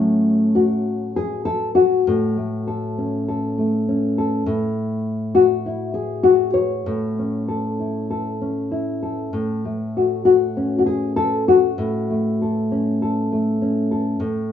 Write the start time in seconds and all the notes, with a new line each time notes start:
Already playing: A2 F#3 A3 C#4 F#4
0.55 F#4
1.16 G#4
1.45 A4
1.75 F#4
2.07 A2
2.37 A3
2.67 A4
2.98 C#4
3.28 A4
3.58 A3
3.88 C#4
4.18 A4
4.46 A2
5.35 F#4
5.66 E4
5.94 G#4
6.23 F#4
6.54 C#5
6.86 A2
7.19 C#4
7.48 A4
7.79 E4
8.10 A4
8.41 C#4
8.71 E4
9.03 A4
9.33 A2
9.65 A3
9.97 F#4
10.25 F#4
10.57 C#4
10.79 F#4
10.86 G#4
11.16 A4
11.48 F#4
11.78 A2
12.11 A3
12.42 A4
12.71 C#4
13.02 A4
13.32 A3
13.62 C#4
13.91 A4
14.20 A2